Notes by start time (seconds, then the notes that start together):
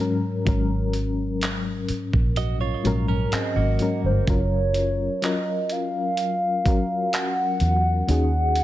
Already playing: G#2
0.00 F#3 C#4 A#4
0.45 G#1 G#2 F#3 C#4 A#4, kick, closed hi-hat
0.93 closed hi-hat
1.41 clap, closed hi-hat
1.89 muted fingered electric bass stroke, closed hi-hat
2.13 A#1, kick
2.36 F#4 D#5, closed hi-hat
2.61 F4 C#5
2.84 A#1 G#2 F#3 C#4 A#4, closed hi-hat
3.08 C#4 A#4
3.32 C4 G#4 D#5, muted fingered electric bass stroke, clap, closed hi-hat
3.56 G#1 A#3 F#4
3.79 G#2 F#3 C#4 A#4, closed hi-hat
4.04 G1 C5
4.27 F#1 F#3 C#4 F4 A#4 C#5, kick, closed hi-hat
4.74 closed hi-hat
5.22 F#3 C#4 F4 A#4 D#5, clap, closed hi-hat
5.69 F5, closed hi-hat
6.17 closed hi-hat
6.65 F#3 C#4 F#4 A#4, kick, closed hi-hat
7.13 F#5, clap, closed hi-hat
7.60 E2, closed hi-hat
8.07 D#2 D#3 C#4 D#4 F#4 G#4 F#5, closed hi-hat
8.55 closed hi-hat